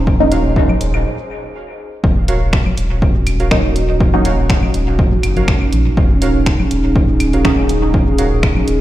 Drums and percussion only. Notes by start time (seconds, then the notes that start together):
0.07 kick
0.32 closed hi-hat
0.56 kick
0.69 low conga, claves
0.81 closed hi-hat
0.94 claves
2.04 kick
2.28 closed hi-hat
2.53 finger snap, kick
2.66 low conga, claves
2.77 closed hi-hat
3.02 kick
3.27 closed hi-hat, claves
3.40 closed hi-hat
3.51 finger snap, kick
3.76 closed hi-hat
4.00 kick
4.25 closed hi-hat
4.50 finger snap, kick
4.63 low conga, claves
4.74 closed hi-hat
4.99 kick
5.12 low conga
5.23 closed hi-hat, claves
5.37 closed hi-hat, low conga
5.48 finger snap, kick
5.61 claves
5.73 closed hi-hat
5.97 kick
6.22 closed hi-hat
6.46 finger snap, kick
6.60 low conga, claves
6.71 closed hi-hat
6.96 kick
7.20 closed hi-hat, claves
7.33 closed hi-hat
7.45 finger snap, kick
7.69 closed hi-hat
7.94 kick
8.18 closed hi-hat
8.43 finger snap, kick
8.56 low conga, claves
8.68 closed hi-hat